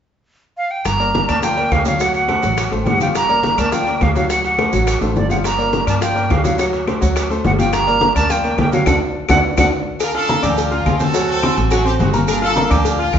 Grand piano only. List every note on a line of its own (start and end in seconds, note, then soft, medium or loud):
0.99 1.23 A#3 medium
0.99 1.23 A#4 medium
0.99 1.23 D5 medium
1.28 1.40 A#3 medium
1.28 1.40 A#4 medium
1.28 1.40 D5 medium
1.42 1.54 F3 medium
1.42 1.54 F4 medium
1.42 1.55 F5 medium
1.57 1.81 A#3 medium
1.57 1.81 A#4 medium
1.57 1.81 D5 medium
1.86 1.97 F#3 medium
1.86 1.98 F#4 medium
1.86 1.98 F#5 medium
2.00 2.24 F#3 medium
2.00 2.24 F#4 medium
2.00 2.24 F#5 medium
2.28 2.40 A3 medium
2.28 2.40 A4 medium
2.28 2.41 C5 medium
2.42 2.66 F#3 medium
2.42 2.66 F#4 medium
2.42 2.67 F#5 medium
2.71 2.95 A3 medium
2.71 2.95 A4 medium
2.71 2.96 C5 medium
3.00 3.24 F3 medium
3.00 3.24 F4 medium
3.00 3.24 F5 medium
3.29 3.53 A#3 medium
3.29 3.53 A#4 medium
3.29 3.53 D5 medium
3.58 3.70 A#3 medium
3.58 3.70 A#4 medium
3.58 3.70 D5 medium
3.72 3.84 F3 medium
3.72 3.84 F4 medium
3.72 3.84 F5 medium
3.87 4.10 A#3 medium
3.87 4.10 A#4 medium
3.87 4.10 D5 medium
4.15 4.27 F#3 medium
4.15 4.27 F#4 medium
4.15 4.27 F#5 medium
4.29 4.53 F#3 medium
4.29 4.53 F#4 medium
4.29 4.54 F#5 medium
4.58 4.70 A3 medium
4.58 4.70 A4 medium
4.58 4.70 C5 medium
4.73 4.96 F#3 medium
4.73 4.96 F#4 medium
4.73 4.97 F#5 medium
5.01 5.25 A3 medium
5.01 5.25 A4 medium
5.01 5.25 C5 medium
5.29 5.53 F3 medium
5.29 5.53 F4 medium
5.29 5.53 F5 medium
5.58 5.82 A#3 medium
5.58 5.82 A#4 medium
5.58 5.82 D5 medium
5.87 5.99 A#3 medium
5.87 5.99 A#4 medium
5.87 5.99 D5 medium
6.01 6.13 F3 medium
6.01 6.13 F4 medium
6.01 6.13 F5 medium
6.15 6.39 A#3 medium
6.15 6.39 A#4 medium
6.15 6.39 D5 medium
6.44 6.56 F#3 medium
6.44 6.56 F#4 medium
6.44 6.56 F#5 medium
6.58 6.82 F#3 medium
6.58 6.82 F#4 medium
6.58 6.82 F#5 medium
6.87 6.99 A3 medium
6.87 6.99 A4 medium
6.87 6.99 C5 medium
7.01 7.25 F#3 medium
7.01 7.25 F#4 medium
7.01 7.25 F#5 medium
7.30 7.54 A3 medium
7.30 7.54 A4 medium
7.30 7.54 C5 medium
7.59 7.82 F3 medium
7.59 7.82 F4 medium
7.59 7.82 F5 medium
7.87 8.10 A#3 medium
7.87 8.11 A#4 medium
7.87 8.11 D5 medium
8.15 8.27 A#3 medium
8.15 8.27 A#4 medium
8.15 8.27 D5 medium
8.29 8.41 F3 medium
8.29 8.41 F4 medium
8.29 8.41 F5 medium
8.44 8.67 A#3 medium
8.44 8.68 A#4 medium
8.44 8.68 D5 medium
8.72 8.84 F#3 medium
8.72 8.84 F#4 medium
8.72 8.84 F#5 medium
8.86 8.96 D4 medium
8.86 8.96 F#4 medium
8.86 8.96 A4 loud
9.29 9.38 D4 medium
9.29 9.38 F#4 medium
9.29 9.38 A4 medium
9.57 9.67 D4 medium
9.57 9.67 F#4 medium
9.57 9.67 A4 medium
10.14 10.26 F4 medium
10.14 10.26 F5 medium
10.14 10.27 F6 medium
10.29 10.41 A#3 medium
10.29 10.41 A#4 medium
10.29 10.41 A#5 medium
10.43 10.66 D4 medium
10.43 10.66 D5 medium
10.43 10.66 D6 medium
10.71 10.95 F4 medium
10.71 10.95 F5 medium
10.71 10.95 F6 medium
10.99 11.11 C4 medium
10.99 11.12 C5 medium
10.99 11.12 C6 medium
11.14 11.37 F#3 medium
11.14 11.38 F#4 medium
11.14 11.38 F#5 medium
11.42 11.66 C4 medium
11.42 11.66 C5 medium
11.42 11.66 C6 medium
11.71 11.83 F#3 medium
11.71 11.83 F#4 medium
11.71 11.83 F#5 medium
11.85 12.08 C4 medium
11.85 12.09 C5 medium
11.85 12.09 C6 medium
12.13 12.37 A#3 medium
12.13 12.37 A#4 medium
12.13 12.37 A#5 medium
12.42 12.54 F4 medium
12.42 12.54 F5 medium
12.42 12.54 F6 medium
12.55 12.67 A#3 medium
12.55 12.68 A#4 medium
12.55 12.68 A#5 medium
12.70 12.93 D4 medium
12.70 12.94 D5 medium
12.70 12.94 D6 medium
12.99 13.19 F4 medium
12.99 13.19 F5 medium
12.99 13.19 F6 medium